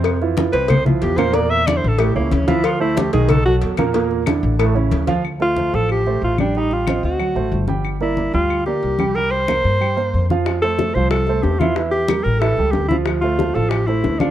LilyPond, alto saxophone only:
\new Staff \with { instrumentName = "Alto saxophone" } { \time 4/4 \key d \minor \tempo 4 = 184 r4. b'8 c''8 e'8 g'8 c''8 | d''8 e''8 \tuplet 3/2 { d''8 c''8 a'8 } g'8 bes8 cis'8 e'8 | f'8 e'8 g'8 gis'8 a'8 fis'8 r4 | r1 |
r8 f'4 a'8 g'4 f'8 d'8 | ees'8 f'4 fis'2 r8 | r8 e'4 f'4 g'4. | bes'8 c''2. r8 |
r8 a'4 c''8 a'4 g'8 f'8 | r8 g'4 bes'8 a'4 g'8 e'8 | r8 f'4 a'8 g'8 e'4 d'8 | }